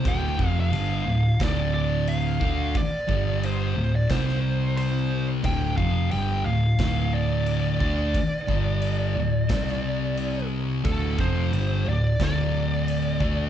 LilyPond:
<<
  \new Staff \with { instrumentName = "Lead electric guitar" } { \time 4/4 \key d \minor \tempo 4 = 89 g''8. f''4~ f''16 d''8 d''8 f''4 | d''4 c''8. d''16 c''4 c''8. r16 | g''8 f''8 g''8 f''4 d''4 d''8~ | d''2.~ d''8 r8 |
a'8 c''4 d''8 d''2 | }
  \new Staff \with { instrumentName = "Distorted electric guitar" } { \clef bass \time 4/4 \key d \minor <d, a, d>8 <f, c f>8 <g, d g>8 <d, a,>8 <d, a, d>4. <d a d'>8 | r8 <g, d g>4 <d, a,>8 <c g c'>2 | <d, a, d>8 <f, c f>8 <g, d g>8 <d, a,>8 <d, a, d>4. <d a d'>8 | r8 <g, d g>4 <d, a,>8 <c g c'>2 |
<d, a, d>8 <f, c f>8 <g, d g>8 <d, a,>8 <d, a, d>4. <d a d'>8 | }
  \new Staff \with { instrumentName = "Distorted electric guitar" } { \clef bass \time 4/4 \key d \minor <d, a, d>8 <f, c f>8 <g, d g>8 <d, a,>8 <d, a, d>4. <d a d'>8 | r8 <g, d g>4 <d, a,>8 <c g c'>2 | <d, a, d>8 <f, c f>8 <g, d g>8 <d, a,>8 <d, a, d>4. <d a d'>8 | r8 <g, d g>4 <d, a,>8 <c g c'>2 |
<d, a, d>8 <f, c f>8 <g, d g>8 <d, a,>8 <d, a, d>4. <d a d'>8 | }
  \new Staff \with { instrumentName = "Picked electric bass" } { \clef bass \time 4/4 \key d \minor d,,8 f,,8 g,,8 d,,8 d,,4. d,8 | r8 g,,4 d,,8 c,2 | d,,8 f,,8 g,,8 d,,8 d,,4. d,8 | r8 g,,4 d,,8 c,2 |
d,,8 f,,8 g,,8 d,,8 d,,4. d,8 | }
  \new DrumStaff \with { instrumentName = "Drums" } \drummode { \time 4/4 <cymc bd>8 bd8 cymc4 <cymc bd sn>4 cymc8 bd8 | <cymc bd>8 bd8 cymc4 <cymc bd sn>16 sn8. cymc4 | <cymc bd>8 bd8 cymc4 <cymc bd sn>4 cymc8 bd8 | <cymc bd>8 bd8 cymc4 <cymc bd sn>16 sn8. cymc4 |
<cymc bd>8 bd8 cymc4 <cymc bd sn>4 cymc8 bd8 | }
>>